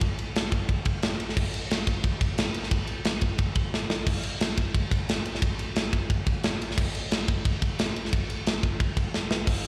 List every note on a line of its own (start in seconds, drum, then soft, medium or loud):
0.01 kick loud
0.01 ride loud
0.19 ride medium
0.36 snare loud
0.36 ride medium
0.52 kick medium
0.52 ride medium
0.69 kick loud
0.69 ride medium
0.85 kick medium
0.85 ride medium
1.03 snare loud
1.03 ride medium
1.20 ride medium
1.29 snare soft
1.37 kick loud
1.37 crash loud
1.54 ride medium
1.71 snare loud
1.71 ride loud
1.87 kick medium
1.87 ride medium
2.04 kick loud
2.04 ride loud
2.21 kick medium
2.21 ride medium
2.38 snare loud
2.38 ride loud
2.54 ride medium
2.63 snare soft
2.71 kick loud
2.71 ride loud
2.87 ride medium
3.05 snare loud
3.05 ride loud
3.21 kick medium
3.21 ride medium
3.38 kick loud
3.38 ride medium
3.55 kick loud
3.55 ride medium
3.74 snare medium
3.90 snare medium
4.07 kick loud
4.07 crash loud
4.23 ride medium
4.40 snare loud
4.40 ride loud
4.58 kick medium
4.58 ride medium
4.75 kick loud
4.75 ride loud
4.91 kick medium
4.91 ride medium
5.09 snare loud
5.09 ride loud
5.25 ride medium
5.35 snare soft
5.42 kick loud
5.42 ride loud
5.59 ride medium
5.76 snare loud
5.76 ride loud
5.93 kick medium
5.93 ride medium
6.10 kick loud
6.10 ride medium
6.27 kick loud
6.27 ride medium
6.43 snare loud
6.43 ride loud
6.62 ride medium
6.71 snare soft
6.78 kick loud
6.78 crash loud
6.95 ride medium
7.11 snare loud
7.11 ride loud
7.28 kick loud
7.28 ride medium
7.45 kick loud
7.45 ride loud
7.62 kick medium
7.62 ride medium
7.79 snare loud
7.79 ride loud
7.96 ride medium
8.05 snare soft
8.13 kick loud
8.13 ride loud
8.30 ride medium
8.46 snare loud
8.46 ride loud
8.63 kick medium
8.63 ride medium
8.80 kick loud
8.80 ride medium
8.97 kick medium
8.97 ride medium
9.14 snare medium
9.31 snare medium
9.47 kick loud
9.47 crash loud
9.64 open hi-hat medium